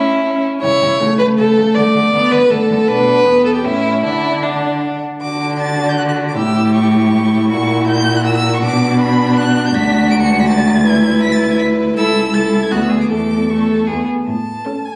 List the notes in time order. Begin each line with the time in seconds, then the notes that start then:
Already playing: C#4 E4
0.25 C#4 A5
0.62 C#3 E4 C#5 G5
0.81 C#3 G5
1.00 C#3 A3 G5
1.19 C#3 B4 G5
1.38 C#3 A4 G5
1.56 C#3 G5
1.74 D3 D5 F#5
1.94 D3 F#5
2.13 D3 B3 F#5
2.31 D3 B4 F#5
2.49 D3 A3 A4 F#5
2.69 D3 F#5
2.88 B2 D4 B4 F#5
3.26 E2 B3 G5
3.45 A4
3.55 G4
3.64 A2 C#4 E4 G5
4.03 D3 D4 E4 F#5
4.42 D4 F#5
5.22 D3 D4 F#4 D6
5.60 A6
5.89 G6
5.98 F#6
6.09 F#6
6.28 D6
6.36 A2 E4 G4 E6
6.75 C#6
7.49 A#2 F#4 C#6
7.87 G6
8.16 F#6
8.25 E6
8.36 E6
8.54 C#6
8.62 B2 D4 D6
9.00 B5
9.37 F#6
9.66 G6
9.73 D2 F#4 B6
10.11 D7
10.21 C#7
10.40 B6
10.48 A6
10.84 E4 B4 G#6
11.23 B6
11.32 A6
11.51 G#6
11.59 B6
11.96 C#2 E4 A4 E6
12.33 E4 A4 A6
12.62 G#6
12.71 D2 B3 F#4 F#6
12.82 E6
12.90 G#4
13.01 D6
13.10 E2 A3 A4 D6
13.48 A3 A4 C#6
13.87 E2 B3 G#4
14.26 A2 A5
14.65 C#4 A4
14.85 G#5